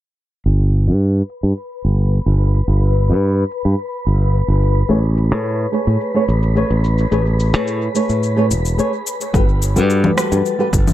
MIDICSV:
0, 0, Header, 1, 5, 480
1, 0, Start_track
1, 0, Key_signature, 1, "major"
1, 0, Tempo, 555556
1, 391, Time_signature, 4, 2, 24, 8
1, 9447, End_track
2, 0, Start_track
2, 0, Title_t, "Synth texture"
2, 0, Program_c, 0, 99
2, 388, Note_on_c, 0, 83, 74
2, 389, Note_on_c, 0, 71, 73
2, 8073, Note_on_c, 0, 57, 77
2, 8075, Note_on_c, 0, 93, 78
2, 8080, Note_off_c, 0, 71, 0
2, 8080, Note_off_c, 0, 83, 0
2, 9447, Note_off_c, 0, 57, 0
2, 9447, Note_off_c, 0, 93, 0
2, 9447, End_track
3, 0, Start_track
3, 0, Title_t, "Nylon-string guitar"
3, 0, Program_c, 1, 24
3, 4222, Note_on_c, 1, 57, 88
3, 4230, Note_on_c, 1, 68, 78
3, 4234, Note_on_c, 1, 71, 82
3, 4239, Note_on_c, 1, 73, 97
3, 4293, Note_off_c, 1, 57, 0
3, 4297, Note_off_c, 1, 68, 0
3, 4299, Note_off_c, 1, 71, 0
3, 4302, Note_off_c, 1, 73, 0
3, 4584, Note_on_c, 1, 57, 69
3, 4590, Note_on_c, 1, 68, 62
3, 4595, Note_on_c, 1, 71, 59
3, 4601, Note_on_c, 1, 73, 72
3, 4918, Note_off_c, 1, 57, 0
3, 4921, Note_off_c, 1, 68, 0
3, 4924, Note_off_c, 1, 71, 0
3, 4927, Note_off_c, 1, 73, 0
3, 4941, Note_on_c, 1, 57, 70
3, 4947, Note_on_c, 1, 68, 60
3, 4953, Note_on_c, 1, 71, 63
3, 4958, Note_on_c, 1, 73, 76
3, 5279, Note_off_c, 1, 57, 0
3, 5282, Note_off_c, 1, 68, 0
3, 5285, Note_off_c, 1, 71, 0
3, 5288, Note_off_c, 1, 73, 0
3, 5308, Note_on_c, 1, 57, 79
3, 5313, Note_on_c, 1, 68, 72
3, 5319, Note_on_c, 1, 71, 74
3, 5325, Note_on_c, 1, 73, 88
3, 5375, Note_off_c, 1, 57, 0
3, 5378, Note_off_c, 1, 68, 0
3, 5381, Note_off_c, 1, 71, 0
3, 5384, Note_off_c, 1, 73, 0
3, 5662, Note_on_c, 1, 57, 71
3, 5669, Note_on_c, 1, 68, 67
3, 5673, Note_on_c, 1, 71, 67
3, 5679, Note_on_c, 1, 73, 80
3, 5774, Note_off_c, 1, 57, 0
3, 5777, Note_off_c, 1, 68, 0
3, 5779, Note_off_c, 1, 71, 0
3, 5782, Note_off_c, 1, 73, 0
3, 6144, Note_on_c, 1, 57, 90
3, 6148, Note_on_c, 1, 68, 80
3, 6155, Note_on_c, 1, 71, 78
3, 6163, Note_on_c, 1, 73, 96
3, 6214, Note_off_c, 1, 57, 0
3, 6216, Note_off_c, 1, 68, 0
3, 6221, Note_off_c, 1, 71, 0
3, 6222, Note_off_c, 1, 73, 0
3, 6504, Note_on_c, 1, 57, 67
3, 6510, Note_on_c, 1, 68, 64
3, 6516, Note_on_c, 1, 71, 61
3, 6522, Note_on_c, 1, 73, 73
3, 6838, Note_off_c, 1, 57, 0
3, 6841, Note_off_c, 1, 68, 0
3, 6845, Note_off_c, 1, 71, 0
3, 6847, Note_off_c, 1, 73, 0
3, 6864, Note_on_c, 1, 57, 69
3, 6870, Note_on_c, 1, 68, 67
3, 6875, Note_on_c, 1, 71, 65
3, 6881, Note_on_c, 1, 73, 81
3, 7200, Note_off_c, 1, 57, 0
3, 7204, Note_off_c, 1, 68, 0
3, 7206, Note_off_c, 1, 71, 0
3, 7209, Note_off_c, 1, 73, 0
3, 7225, Note_on_c, 1, 57, 77
3, 7229, Note_on_c, 1, 68, 70
3, 7236, Note_on_c, 1, 71, 71
3, 7242, Note_on_c, 1, 73, 83
3, 7294, Note_off_c, 1, 57, 0
3, 7296, Note_off_c, 1, 68, 0
3, 7299, Note_off_c, 1, 71, 0
3, 7303, Note_off_c, 1, 73, 0
3, 7582, Note_on_c, 1, 57, 68
3, 7587, Note_on_c, 1, 68, 71
3, 7592, Note_on_c, 1, 71, 67
3, 7599, Note_on_c, 1, 73, 81
3, 7693, Note_off_c, 1, 57, 0
3, 7696, Note_off_c, 1, 68, 0
3, 7699, Note_off_c, 1, 71, 0
3, 7702, Note_off_c, 1, 73, 0
3, 8063, Note_on_c, 1, 55, 91
3, 8069, Note_on_c, 1, 66, 84
3, 8073, Note_on_c, 1, 69, 84
3, 8080, Note_on_c, 1, 71, 100
3, 8134, Note_off_c, 1, 55, 0
3, 8137, Note_off_c, 1, 66, 0
3, 8139, Note_off_c, 1, 69, 0
3, 8142, Note_off_c, 1, 71, 0
3, 8427, Note_on_c, 1, 55, 70
3, 8432, Note_on_c, 1, 66, 62
3, 8436, Note_on_c, 1, 69, 60
3, 8443, Note_on_c, 1, 71, 74
3, 8760, Note_off_c, 1, 55, 0
3, 8762, Note_off_c, 1, 66, 0
3, 8764, Note_off_c, 1, 69, 0
3, 8768, Note_off_c, 1, 71, 0
3, 8781, Note_on_c, 1, 55, 69
3, 8786, Note_on_c, 1, 66, 63
3, 8791, Note_on_c, 1, 69, 62
3, 8796, Note_on_c, 1, 71, 79
3, 9119, Note_off_c, 1, 55, 0
3, 9121, Note_off_c, 1, 66, 0
3, 9124, Note_off_c, 1, 69, 0
3, 9126, Note_off_c, 1, 71, 0
3, 9146, Note_on_c, 1, 55, 76
3, 9152, Note_on_c, 1, 66, 73
3, 9158, Note_on_c, 1, 69, 74
3, 9162, Note_on_c, 1, 71, 87
3, 9214, Note_off_c, 1, 55, 0
3, 9217, Note_off_c, 1, 66, 0
3, 9220, Note_off_c, 1, 69, 0
3, 9222, Note_off_c, 1, 71, 0
3, 9447, End_track
4, 0, Start_track
4, 0, Title_t, "Fingered electric bass"
4, 0, Program_c, 2, 33
4, 395, Note_on_c, 2, 31, 86
4, 756, Note_on_c, 2, 43, 70
4, 769, Note_off_c, 2, 31, 0
4, 1046, Note_off_c, 2, 43, 0
4, 1238, Note_on_c, 2, 43, 74
4, 1312, Note_off_c, 2, 43, 0
4, 1595, Note_on_c, 2, 31, 73
4, 1886, Note_off_c, 2, 31, 0
4, 1954, Note_on_c, 2, 31, 86
4, 2245, Note_off_c, 2, 31, 0
4, 2313, Note_on_c, 2, 31, 87
4, 2674, Note_on_c, 2, 43, 73
4, 2687, Note_off_c, 2, 31, 0
4, 2965, Note_off_c, 2, 43, 0
4, 3154, Note_on_c, 2, 43, 81
4, 3230, Note_off_c, 2, 43, 0
4, 3513, Note_on_c, 2, 31, 76
4, 3805, Note_off_c, 2, 31, 0
4, 3873, Note_on_c, 2, 31, 88
4, 4164, Note_off_c, 2, 31, 0
4, 4230, Note_on_c, 2, 33, 90
4, 4594, Note_off_c, 2, 33, 0
4, 4594, Note_on_c, 2, 45, 81
4, 4885, Note_off_c, 2, 45, 0
4, 5073, Note_on_c, 2, 45, 83
4, 5149, Note_off_c, 2, 45, 0
4, 5430, Note_on_c, 2, 33, 81
4, 5724, Note_off_c, 2, 33, 0
4, 5793, Note_on_c, 2, 33, 97
4, 6085, Note_off_c, 2, 33, 0
4, 6151, Note_on_c, 2, 33, 91
4, 6514, Note_off_c, 2, 33, 0
4, 6514, Note_on_c, 2, 45, 83
4, 6805, Note_off_c, 2, 45, 0
4, 6994, Note_on_c, 2, 45, 84
4, 7351, Note_on_c, 2, 28, 87
4, 7364, Note_off_c, 2, 45, 0
4, 7591, Note_off_c, 2, 28, 0
4, 8070, Note_on_c, 2, 31, 90
4, 8435, Note_on_c, 2, 43, 83
4, 8448, Note_off_c, 2, 31, 0
4, 8725, Note_off_c, 2, 43, 0
4, 8916, Note_on_c, 2, 43, 80
4, 8991, Note_off_c, 2, 43, 0
4, 9271, Note_on_c, 2, 31, 80
4, 9447, Note_off_c, 2, 31, 0
4, 9447, End_track
5, 0, Start_track
5, 0, Title_t, "Drums"
5, 395, Note_on_c, 9, 69, 30
5, 481, Note_off_c, 9, 69, 0
5, 633, Note_on_c, 9, 69, 69
5, 720, Note_off_c, 9, 69, 0
5, 756, Note_on_c, 9, 69, 38
5, 842, Note_off_c, 9, 69, 0
5, 874, Note_on_c, 9, 69, 27
5, 961, Note_off_c, 9, 69, 0
5, 1113, Note_on_c, 9, 69, 63
5, 1200, Note_off_c, 9, 69, 0
5, 1236, Note_on_c, 9, 69, 35
5, 1323, Note_off_c, 9, 69, 0
5, 1353, Note_on_c, 9, 69, 29
5, 1440, Note_off_c, 9, 69, 0
5, 1592, Note_on_c, 9, 69, 64
5, 1678, Note_off_c, 9, 69, 0
5, 1714, Note_on_c, 9, 69, 37
5, 1800, Note_off_c, 9, 69, 0
5, 1833, Note_on_c, 9, 69, 28
5, 1919, Note_off_c, 9, 69, 0
5, 2073, Note_on_c, 9, 69, 69
5, 2159, Note_off_c, 9, 69, 0
5, 2194, Note_on_c, 9, 69, 36
5, 2281, Note_off_c, 9, 69, 0
5, 2314, Note_on_c, 9, 69, 32
5, 2400, Note_off_c, 9, 69, 0
5, 2553, Note_on_c, 9, 69, 72
5, 2640, Note_off_c, 9, 69, 0
5, 2676, Note_on_c, 9, 69, 39
5, 2762, Note_off_c, 9, 69, 0
5, 2795, Note_on_c, 9, 69, 31
5, 2881, Note_off_c, 9, 69, 0
5, 3034, Note_on_c, 9, 69, 69
5, 3120, Note_off_c, 9, 69, 0
5, 3156, Note_on_c, 9, 69, 39
5, 3243, Note_off_c, 9, 69, 0
5, 3273, Note_on_c, 9, 69, 29
5, 3359, Note_off_c, 9, 69, 0
5, 3512, Note_on_c, 9, 69, 68
5, 3598, Note_off_c, 9, 69, 0
5, 3634, Note_on_c, 9, 69, 39
5, 3720, Note_off_c, 9, 69, 0
5, 3751, Note_on_c, 9, 69, 29
5, 3838, Note_off_c, 9, 69, 0
5, 3991, Note_on_c, 9, 69, 74
5, 4077, Note_off_c, 9, 69, 0
5, 4113, Note_on_c, 9, 69, 41
5, 4199, Note_off_c, 9, 69, 0
5, 4231, Note_on_c, 9, 69, 31
5, 4317, Note_off_c, 9, 69, 0
5, 4471, Note_on_c, 9, 69, 73
5, 4558, Note_off_c, 9, 69, 0
5, 4592, Note_on_c, 9, 69, 42
5, 4679, Note_off_c, 9, 69, 0
5, 4711, Note_on_c, 9, 69, 32
5, 4797, Note_off_c, 9, 69, 0
5, 4951, Note_on_c, 9, 69, 67
5, 5037, Note_off_c, 9, 69, 0
5, 5073, Note_on_c, 9, 69, 38
5, 5160, Note_off_c, 9, 69, 0
5, 5191, Note_on_c, 9, 69, 31
5, 5277, Note_off_c, 9, 69, 0
5, 5432, Note_on_c, 9, 69, 71
5, 5519, Note_off_c, 9, 69, 0
5, 5553, Note_on_c, 9, 69, 39
5, 5639, Note_off_c, 9, 69, 0
5, 5672, Note_on_c, 9, 69, 29
5, 5758, Note_off_c, 9, 69, 0
5, 5911, Note_on_c, 9, 69, 71
5, 5998, Note_off_c, 9, 69, 0
5, 6032, Note_on_c, 9, 69, 42
5, 6119, Note_off_c, 9, 69, 0
5, 6151, Note_on_c, 9, 69, 29
5, 6237, Note_off_c, 9, 69, 0
5, 6392, Note_on_c, 9, 69, 72
5, 6478, Note_off_c, 9, 69, 0
5, 6514, Note_on_c, 9, 69, 42
5, 6600, Note_off_c, 9, 69, 0
5, 6631, Note_on_c, 9, 69, 32
5, 6718, Note_off_c, 9, 69, 0
5, 6872, Note_on_c, 9, 69, 75
5, 6959, Note_off_c, 9, 69, 0
5, 6994, Note_on_c, 9, 69, 38
5, 7080, Note_off_c, 9, 69, 0
5, 7113, Note_on_c, 9, 69, 31
5, 7199, Note_off_c, 9, 69, 0
5, 7353, Note_on_c, 9, 69, 72
5, 7439, Note_off_c, 9, 69, 0
5, 7477, Note_on_c, 9, 69, 41
5, 7563, Note_off_c, 9, 69, 0
5, 7595, Note_on_c, 9, 69, 32
5, 7681, Note_off_c, 9, 69, 0
5, 7834, Note_on_c, 9, 69, 80
5, 7920, Note_off_c, 9, 69, 0
5, 7957, Note_on_c, 9, 69, 39
5, 8043, Note_off_c, 9, 69, 0
5, 8070, Note_on_c, 9, 36, 107
5, 8074, Note_on_c, 9, 69, 33
5, 8156, Note_off_c, 9, 36, 0
5, 8160, Note_off_c, 9, 69, 0
5, 8313, Note_on_c, 9, 69, 69
5, 8400, Note_off_c, 9, 69, 0
5, 8435, Note_on_c, 9, 69, 39
5, 8522, Note_off_c, 9, 69, 0
5, 8554, Note_on_c, 9, 69, 30
5, 8641, Note_off_c, 9, 69, 0
5, 8675, Note_on_c, 9, 64, 73
5, 8761, Note_off_c, 9, 64, 0
5, 8792, Note_on_c, 9, 37, 73
5, 8793, Note_on_c, 9, 69, 69
5, 8879, Note_off_c, 9, 37, 0
5, 8879, Note_off_c, 9, 69, 0
5, 8917, Note_on_c, 9, 69, 39
5, 9003, Note_off_c, 9, 69, 0
5, 9035, Note_on_c, 9, 69, 32
5, 9121, Note_off_c, 9, 69, 0
5, 9270, Note_on_c, 9, 36, 97
5, 9274, Note_on_c, 9, 69, 69
5, 9357, Note_off_c, 9, 36, 0
5, 9361, Note_off_c, 9, 69, 0
5, 9396, Note_on_c, 9, 64, 56
5, 9397, Note_on_c, 9, 69, 40
5, 9447, Note_off_c, 9, 64, 0
5, 9447, Note_off_c, 9, 69, 0
5, 9447, End_track
0, 0, End_of_file